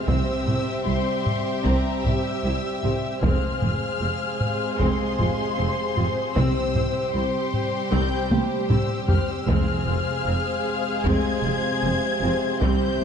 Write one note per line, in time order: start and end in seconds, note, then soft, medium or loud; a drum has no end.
0.00 3.19 C3 medium
0.00 3.19 C4 medium
0.00 3.19 C5 medium
0.06 0.16 C2 medium
0.06 0.17 C2 medium
0.06 3.19 G3 medium
0.06 0.44 C4 medium
0.06 3.22 G4 medium
0.06 3.24 G4 medium
0.06 3.18 E5 medium
0.06 0.85 E6 medium
0.06 taiko medium
0.11 3.24 G5 medium
0.45 0.54 C2 soft
0.45 0.57 C2 medium
0.45 0.54 C4 soft
0.45 0.53 G4 soft
0.45 taiko low-mid soft
0.84 0.94 C2 soft
0.84 0.92 C4 soft
0.84 0.92 E4 medium
0.84 1.63 C6 medium
0.88 0.96 C2 soft
1.26 taiko low-mid soft
1.64 1.73 C2 medium
1.64 1.75 C2 medium
1.64 2.01 C4 medium
1.64 2.05 A#5 medium
1.64 taiko medium
2.05 2.13 C2 soft
2.05 2.14 C2 soft
2.05 2.14 C4 soft
2.05 2.13 G4 medium
2.05 3.23 E6 medium
2.05 taiko low-mid soft
2.44 2.52 C2 medium
2.44 2.55 C2 medium
2.44 2.52 C4 soft
2.44 2.52 E4 medium
2.84 2.92 C2 medium
2.84 2.92 C4 medium
2.84 2.92 G4 medium
2.84 taiko low-mid soft
3.22 3.31 F1 medium
3.22 3.30 F2 medium
3.22 9.45 C3 medium
3.22 3.59 G#3 medium
3.22 6.21 G#3 medium
3.22 9.44 C4 medium
3.22 3.60 C4 medium
3.22 9.30 C4 medium
3.22 6.36 G#4 medium
3.22 6.33 G#4 medium
3.22 9.44 C5 medium
3.22 9.45 C5 medium
3.22 9.30 C5 medium
3.22 6.36 F5 medium
3.22 4.77 F6 loud
3.22 taiko medium
3.62 3.71 F1 medium
3.62 3.70 F2 soft
3.62 3.70 C4 soft
3.62 3.71 F4 soft
3.62 taiko low-mid soft
4.00 4.10 F1 soft
4.00 4.08 F2 soft
4.00 4.10 C4 soft
4.40 taiko low-mid soft
4.79 4.88 F1 medium
4.79 4.87 F2 medium
4.79 5.16 G#3 medium
4.79 5.16 C4 medium
4.79 6.36 C6 loud
4.79 taiko medium
5.19 5.28 F1 soft
5.19 5.27 F2 soft
5.19 5.27 C4 medium
5.19 5.27 F4 soft
5.19 taiko low-mid soft
5.57 5.67 F1 medium
5.57 5.67 F2 medium
5.57 5.66 C4 medium
5.97 6.06 F1 medium
5.97 6.06 F2 medium
5.97 6.05 C4 medium
5.97 6.05 F4 medium
5.97 taiko low-mid soft
6.35 6.44 C2 medium
6.35 6.45 C2 medium
6.35 7.50 C3 medium
6.35 9.45 G3 medium
6.35 6.72 C4 medium
6.35 9.48 G4 medium
6.35 9.49 G4 medium
6.35 9.50 G5 medium
6.35 7.14 E6 loud
6.35 taiko medium
6.74 6.83 C2 medium
6.74 6.82 C4 soft
6.74 6.83 G4 medium
6.74 taiko low-mid soft
7.13 7.23 C2 soft
7.13 7.23 C2 medium
7.13 7.22 C4 medium
7.13 7.22 E4 medium
7.13 7.90 C6 medium
7.54 taiko low-mid soft
7.91 8.00 C2 medium
7.91 8.01 C2 medium
7.91 8.28 C4 medium
7.91 8.31 G6 medium
7.91 taiko medium
8.30 8.39 C2 medium
8.30 8.40 C2 medium
8.30 8.39 C4 medium
8.30 8.38 G4 medium
8.30 taiko high medium
8.68 8.78 C2 medium
8.68 8.79 C2 medium
8.68 8.77 C4 medium
8.68 8.77 E4 medium
8.68 9.06 E6 medium
8.68 taiko low-mid medium
9.08 9.16 C2 medium
9.08 9.19 C2 medium
9.08 9.16 C4 medium
9.08 9.16 G4 medium
9.08 9.28 F6 medium
9.08 taiko low medium
9.29 9.49 E6 medium
9.47 9.56 F1 medium
9.47 10.61 F2 medium
9.47 9.57 F2 medium
9.47 13.04 C3 medium
9.47 9.85 G#3 medium
9.47 12.58 G#3 medium
9.47 13.04 C4 medium
9.47 9.85 C4 medium
9.47 13.04 C4 medium
9.47 12.58 G#4 medium
9.47 12.62 G#4 medium
9.47 13.04 C5 medium
9.47 12.62 F5 medium
9.47 11.04 F6 loud
9.47 taiko medium
9.51 13.04 C5 medium
9.87 9.95 F1 medium
9.87 9.96 F2 medium
9.87 9.95 C4 medium
9.87 9.95 F4 medium
10.26 10.34 F1 medium
10.26 10.35 F2 medium
10.26 10.36 C4 medium
11.05 11.13 F1 medium
11.05 11.14 F2 medium
11.05 11.42 G#3 medium
11.05 11.41 C4 medium
11.05 12.62 G#6 loud
11.05 taiko medium
11.44 11.52 F1 medium
11.44 11.53 F2 medium
11.44 11.54 C4 medium
11.44 11.54 F4 medium
11.84 11.92 F1 medium
11.84 11.92 F2 medium
11.84 11.93 C4 medium
12.23 12.31 F1 medium
12.23 12.31 F2 medium
12.23 12.31 C4 medium
12.23 12.31 F4 medium
12.61 12.70 C2 medium
12.61 13.04 C3 medium
12.61 13.04 E3 medium
12.61 12.98 G3 medium
12.61 12.98 C4 medium
12.61 13.04 G4 medium
12.61 13.04 E5 medium
12.61 13.04 G6 loud
12.61 taiko medium
13.01 13.04 C2 medium